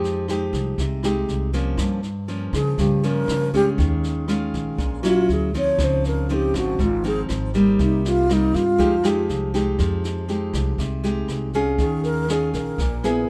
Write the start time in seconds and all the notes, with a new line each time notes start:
Already playing: F2 F3 G#3 D#4 G4
0.04 snare
0.28 G#3 D#4 G4, cross-stick, snare
0.53 C2, kick, snare
0.78 C2 C3, kick, snare
1.03 G#3 D#4 G4, cross-stick, snare
1.28 C2, snare
1.53 F3 A#3 C#4, kick, snare
1.77 G2, kick, cross-stick, snare
2.03 snare
2.28 F3 A#3 C#4, snare
2.53 C#3 G#4, kick, cross-stick, snare
2.78 G2 C#3 G4, kick, snare
3.03 F3 A#3 C#4 A#4, snare
3.28 C#3, cross-stick, snare
3.53 G#3 C#4 F4 G4, kick, snare
3.78 D#2 D#3, kick, snare
4.03 snare
4.28 G#3 C#4 F4, cross-stick, snare
4.53 A#1, kick, snare
4.78 A#1 A#2, kick, snare
5.03 F#3 C#4 E4 F4, cross-stick, snare
5.29 D2, snare
5.33 G#4
5.54 F3 C4 D#4 C#5, kick, snare
5.78 C#2 C#3, kick, cross-stick, snare
5.84 C5
6.04 A#4, snare
6.29 F3 C4 D#4, snare
6.34 G4
6.54 G#1 F#4, kick, cross-stick, snare
6.79 G#1 G#2, kick, snare
6.84 F4
7.04 F3 C4 D#4 G#4, snare
7.29 G#1, cross-stick, snare
7.54 G3 A#3 D#4, kick, snare
7.79 C2 C3, kick, snare
7.83 D#4
8.05 F4, snare
8.29 G3 A#3 D#4, cross-stick, snare
8.54 G2 F4, kick, snare
8.78 F2 F3 G#3 D#4 G4, kick, snare
9.03 G#3 D#4 G4, cross-stick, snare
9.29 C2, snare
9.54 G#3 D#4 G4, kick, snare
9.79 F2 F3, kick, cross-stick, snare
10.04 snare
10.28 G#3 D#4 G4, snare
10.53 C2, kick, cross-stick, snare
10.78 C2 C3, kick, snare
11.03 G#3 D#4 G4, snare
11.28 C2, cross-stick, snare
11.53 C#4 F4 G#4, kick, snare
11.78 D#2 D#3 G#4, kick, snare
12.03 A#4, snare
12.28 C#4 F4 G#4, cross-stick, snare
12.53 A#1 A#4, kick, snare
12.78 A#1 A#2, kick, snare
13.04 B3 E4 G#4, cross-stick, snare